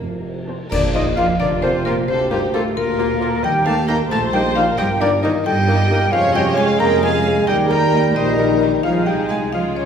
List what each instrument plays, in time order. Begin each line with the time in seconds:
Already playing: violin section A#3, marimba F4
0.01 double bass section F1, tuba F1, cello section F2
0.48 viola section C4 C5, violin section A5
0.71 double bass section A#1, tuba A#1, cello section D3, french horn section D4, violin section A#4, flute D5, oboe D5, marimba D5, concert bass drum, crash
0.94 cello section D#3, violin section A#3 F4 C5, bassoon A#3, french horn section D#4, clarinet F4, flute D#5, marimba D#5, oboe D#5
1.16 cello section F3, violin section A#3 F4 D5, bassoon A#3, french horn section F4, clarinet F4, oboe F5, marimba F5, flute F5
1.40 double bass section F1, tuba F1, cello section D3, french horn section D4, viola section F4, violin section A#4, flute D5, marimba D5, oboe D5
1.62 cello section C3, bassoon A#3, violin section A#3 F4 A4, french horn section C4, clarinet F4, marimba C5, flute C5, oboe C5
1.85 cello section A#2, bassoon A#3, french horn section A#3, violin section A#3 F4 G4, clarinet F4, flute A#4, marimba A#4, oboe A#4
2.08 tuba D2, double bass section D2, cello section C3, french horn section C4, viola section G4, violin section A4, flute C5, marimba C5, oboe C5
2.31 cello section G2, french horn section G3, bassoon A#3, violin section A#3 D#4 F4, clarinet F4, marimba G4, flute G4, oboe G4
2.54 cello section A2, french horn section A3, bassoon A#3, violin section A#3 F4, clarinet F4, marimba A4, flute A4, oboe A4
2.76 double bass section D2, tuba D2, cello section A#2, french horn section A#3, violin section F4, viola section F4, flute A#4, marimba A#4, oboe A#4
2.98 violin section A#3 F4, bassoon A#3, clarinet F4, viola section G4
3.21 bassoon A#3, violin section A#3 F4, clarinet F4, viola section A4
3.43 double bass section D#2, tuba D#2, cello section G3, viola section G4, french horn section G4, violin section D#5, oboe G5, flute G5, marimba G5
3.65 cello section A3, bassoon A#3, violin section A#3 D#4 F5, clarinet D#4, french horn section A4, marimba A5, flute A5, oboe A5
3.88 cello section A#3, bassoon A#3, violin section A#3 D#4 G5, clarinet D#4, french horn section A#4, oboe A#5, flute A#5, marimba A#5
4.10 double bass section A#1, tuba A#1, cello section A3, french horn section A4, viola section C5, violin section F5, flute A5, marimba A5, oboe A5
4.33 cello section G3, bassoon A#3, violin section A#3 D#4 D#5, clarinet D#4, french horn section G4, flute G5, marimba G5, oboe G5
4.55 cello section F3, violin section A#3 D#4 D5, bassoon A#3, clarinet D#4, french horn section F4, flute F5, marimba F5, oboe F5
4.78 tuba G1, double bass section G2, cello section G3, french horn section G4, viola section A#4, violin section D#5, flute G5, marimba G5, oboe G5
5.01 cello section D3, violin section A#3 D#4 A#4, bassoon A#3, french horn section D4, clarinet D#4, flute D5, oboe D5, marimba D5
5.23 cello section D#3, violin section A#3 D#4 C5, bassoon A#3, clarinet D#4, french horn section D#4, oboe D#5, flute D#5, marimba D#5
5.45 tuba G1, double bass section G2, cello section G3, french horn section G4, viola section A4, violin section D#5, flute G5, marimba G5, oboe G5
5.68 bassoon A#3, violin section A#3 D#4, clarinet D#4, viola section G4
5.91 bassoon A#3, violin section A#3 D#4, clarinet D#4, viola section A#4
6.12 tuba F1, double bass section F2, cello section F3, bassoon G#3, clarinet C#4, french horn section F4, viola section C#5, violin section C#5, flute F5, oboe F5, marimba F5
6.34 cello section G3, violin section G#3 C#4 D#5, french horn section G4, flute G5, marimba G5, oboe G5
6.57 cello section G#3, violin section G#3 C#4 F5, french horn section G#4, flute G#5, marimba G#5, oboe G#5
6.79 tuba F1, double bass section F2, cello section A#3, viola section G#4, french horn section A#4, violin section G5, flute A#5, marimba A#5, oboe A#5
7.02 violin section G#3 C#4 F5, cello section G#3, french horn section G#4, flute G#5, marimba G#5, oboe G#5
7.26 violin section G#3 C#4
7.47 double bass section D#2, tuba D#2, bassoon G3, cello section G3, clarinet D#4, french horn section G4, viola section A#4, violin section D#5, marimba G5, flute G5, oboe G5
7.69 violin section G3 D#4 G5, cello section A#3, french horn section A#4, flute A#5, marimba A#5, oboe A#5
7.94 violin section G3 D#4
8.15 double bass section A#1, tuba A#1, cello section D#3, french horn section D#4, violin section A#4, viola section C5, flute D#5, marimba D#5, oboe D#5
8.38 violin section G3 D#4, viola section A#4
8.61 violin section G3 D#4, viola section G4
8.83 tuba C2, double bass section C2, cello section F3, bassoon G#3, violin section G#3 D#4 C#5, clarinet D#4, french horn section F4, viola section G#4, marimba F5, flute F5, oboe F5
9.06 cello section G3, french horn section G4, violin section D#5, flute G5, marimba G5, oboe G5
9.29 cello section G#3, french horn section G#4, violin section F5, marimba G#5, flute G#5, oboe G#5
9.53 double bass section C#2, tuba C#2, cello section F3, violin section G#3 F4 C#5, bassoon G#3, french horn section F4, clarinet F4, viola section G#4, marimba F5, flute F5, oboe F5
9.76 cello section C#3, french horn section C#4, violin section A#4, marimba C#5, flute C#5, oboe C#5